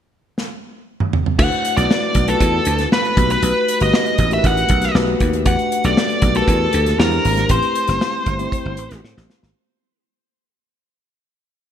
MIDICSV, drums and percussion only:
0, 0, Header, 1, 2, 480
1, 0, Start_track
1, 0, Tempo, 510204
1, 1304, Time_signature, 4, 2, 24, 8
1, 11021, End_track
2, 0, Start_track
2, 0, Title_t, "Drums"
2, 355, Note_on_c, 9, 38, 48
2, 450, Note_off_c, 9, 38, 0
2, 944, Note_on_c, 9, 45, 63
2, 1038, Note_off_c, 9, 45, 0
2, 1066, Note_on_c, 9, 43, 86
2, 1160, Note_off_c, 9, 43, 0
2, 1188, Note_on_c, 9, 43, 70
2, 1282, Note_off_c, 9, 43, 0
2, 1306, Note_on_c, 9, 49, 76
2, 1307, Note_on_c, 9, 36, 98
2, 1400, Note_off_c, 9, 49, 0
2, 1401, Note_off_c, 9, 36, 0
2, 1431, Note_on_c, 9, 42, 30
2, 1525, Note_off_c, 9, 42, 0
2, 1551, Note_on_c, 9, 42, 70
2, 1645, Note_off_c, 9, 42, 0
2, 1667, Note_on_c, 9, 42, 48
2, 1761, Note_off_c, 9, 42, 0
2, 1793, Note_on_c, 9, 38, 100
2, 1887, Note_off_c, 9, 38, 0
2, 2019, Note_on_c, 9, 42, 72
2, 2024, Note_on_c, 9, 36, 75
2, 2113, Note_off_c, 9, 42, 0
2, 2118, Note_off_c, 9, 36, 0
2, 2143, Note_on_c, 9, 42, 44
2, 2237, Note_off_c, 9, 42, 0
2, 2263, Note_on_c, 9, 36, 76
2, 2263, Note_on_c, 9, 42, 74
2, 2357, Note_off_c, 9, 36, 0
2, 2358, Note_off_c, 9, 42, 0
2, 2495, Note_on_c, 9, 42, 69
2, 2590, Note_off_c, 9, 42, 0
2, 2620, Note_on_c, 9, 42, 40
2, 2630, Note_on_c, 9, 38, 29
2, 2714, Note_off_c, 9, 42, 0
2, 2724, Note_off_c, 9, 38, 0
2, 2749, Note_on_c, 9, 38, 105
2, 2843, Note_off_c, 9, 38, 0
2, 2869, Note_on_c, 9, 42, 27
2, 2963, Note_off_c, 9, 42, 0
2, 2983, Note_on_c, 9, 36, 95
2, 2985, Note_on_c, 9, 42, 69
2, 3078, Note_off_c, 9, 36, 0
2, 3079, Note_off_c, 9, 42, 0
2, 3106, Note_on_c, 9, 42, 45
2, 3200, Note_off_c, 9, 42, 0
2, 3223, Note_on_c, 9, 42, 87
2, 3317, Note_off_c, 9, 42, 0
2, 3466, Note_on_c, 9, 42, 68
2, 3560, Note_off_c, 9, 42, 0
2, 3579, Note_on_c, 9, 42, 48
2, 3673, Note_off_c, 9, 42, 0
2, 3703, Note_on_c, 9, 38, 98
2, 3797, Note_off_c, 9, 38, 0
2, 3821, Note_on_c, 9, 42, 29
2, 3916, Note_off_c, 9, 42, 0
2, 3935, Note_on_c, 9, 42, 66
2, 3939, Note_on_c, 9, 36, 77
2, 4029, Note_off_c, 9, 42, 0
2, 4033, Note_off_c, 9, 36, 0
2, 4055, Note_on_c, 9, 42, 39
2, 4149, Note_off_c, 9, 42, 0
2, 4177, Note_on_c, 9, 36, 83
2, 4180, Note_on_c, 9, 42, 73
2, 4272, Note_off_c, 9, 36, 0
2, 4274, Note_off_c, 9, 42, 0
2, 4302, Note_on_c, 9, 42, 33
2, 4396, Note_off_c, 9, 42, 0
2, 4408, Note_on_c, 9, 42, 72
2, 4420, Note_on_c, 9, 36, 84
2, 4502, Note_off_c, 9, 42, 0
2, 4514, Note_off_c, 9, 36, 0
2, 4531, Note_on_c, 9, 42, 42
2, 4541, Note_on_c, 9, 38, 30
2, 4625, Note_off_c, 9, 42, 0
2, 4636, Note_off_c, 9, 38, 0
2, 4658, Note_on_c, 9, 38, 109
2, 4752, Note_off_c, 9, 38, 0
2, 4895, Note_on_c, 9, 42, 60
2, 4897, Note_on_c, 9, 36, 75
2, 4990, Note_off_c, 9, 42, 0
2, 4991, Note_off_c, 9, 36, 0
2, 5018, Note_on_c, 9, 42, 43
2, 5112, Note_off_c, 9, 42, 0
2, 5133, Note_on_c, 9, 42, 89
2, 5136, Note_on_c, 9, 36, 96
2, 5227, Note_off_c, 9, 42, 0
2, 5230, Note_off_c, 9, 36, 0
2, 5258, Note_on_c, 9, 42, 32
2, 5352, Note_off_c, 9, 42, 0
2, 5382, Note_on_c, 9, 42, 64
2, 5476, Note_off_c, 9, 42, 0
2, 5494, Note_on_c, 9, 42, 44
2, 5588, Note_off_c, 9, 42, 0
2, 5620, Note_on_c, 9, 38, 104
2, 5714, Note_off_c, 9, 38, 0
2, 5737, Note_on_c, 9, 42, 33
2, 5831, Note_off_c, 9, 42, 0
2, 5850, Note_on_c, 9, 42, 68
2, 5854, Note_on_c, 9, 36, 87
2, 5944, Note_off_c, 9, 42, 0
2, 5948, Note_off_c, 9, 36, 0
2, 5972, Note_on_c, 9, 42, 44
2, 6066, Note_off_c, 9, 42, 0
2, 6094, Note_on_c, 9, 36, 83
2, 6100, Note_on_c, 9, 42, 81
2, 6188, Note_off_c, 9, 36, 0
2, 6194, Note_off_c, 9, 42, 0
2, 6329, Note_on_c, 9, 42, 72
2, 6423, Note_off_c, 9, 42, 0
2, 6458, Note_on_c, 9, 42, 47
2, 6468, Note_on_c, 9, 38, 30
2, 6552, Note_off_c, 9, 42, 0
2, 6562, Note_off_c, 9, 38, 0
2, 6583, Note_on_c, 9, 38, 109
2, 6677, Note_off_c, 9, 38, 0
2, 6697, Note_on_c, 9, 42, 31
2, 6791, Note_off_c, 9, 42, 0
2, 6818, Note_on_c, 9, 46, 67
2, 6913, Note_off_c, 9, 46, 0
2, 6937, Note_on_c, 9, 42, 46
2, 6940, Note_on_c, 9, 38, 32
2, 7031, Note_off_c, 9, 42, 0
2, 7034, Note_off_c, 9, 38, 0
2, 7049, Note_on_c, 9, 42, 88
2, 7054, Note_on_c, 9, 36, 93
2, 7143, Note_off_c, 9, 42, 0
2, 7148, Note_off_c, 9, 36, 0
2, 7175, Note_on_c, 9, 42, 33
2, 7269, Note_off_c, 9, 42, 0
2, 7296, Note_on_c, 9, 42, 63
2, 7390, Note_off_c, 9, 42, 0
2, 7410, Note_on_c, 9, 42, 44
2, 7417, Note_on_c, 9, 38, 34
2, 7504, Note_off_c, 9, 42, 0
2, 7511, Note_off_c, 9, 38, 0
2, 7539, Note_on_c, 9, 38, 100
2, 7633, Note_off_c, 9, 38, 0
2, 7773, Note_on_c, 9, 42, 74
2, 7776, Note_on_c, 9, 36, 82
2, 7867, Note_off_c, 9, 42, 0
2, 7870, Note_off_c, 9, 36, 0
2, 7895, Note_on_c, 9, 42, 42
2, 7989, Note_off_c, 9, 42, 0
2, 8018, Note_on_c, 9, 36, 88
2, 8024, Note_on_c, 9, 42, 76
2, 8112, Note_off_c, 9, 36, 0
2, 8118, Note_off_c, 9, 42, 0
2, 8252, Note_on_c, 9, 42, 73
2, 8346, Note_off_c, 9, 42, 0
2, 8380, Note_on_c, 9, 42, 44
2, 8390, Note_on_c, 9, 38, 32
2, 8474, Note_off_c, 9, 42, 0
2, 8484, Note_off_c, 9, 38, 0
2, 8509, Note_on_c, 9, 38, 50
2, 8603, Note_off_c, 9, 38, 0
2, 8629, Note_on_c, 9, 38, 49
2, 8723, Note_off_c, 9, 38, 0
2, 8747, Note_on_c, 9, 38, 76
2, 8841, Note_off_c, 9, 38, 0
2, 8870, Note_on_c, 9, 38, 74
2, 8965, Note_off_c, 9, 38, 0
2, 11021, End_track
0, 0, End_of_file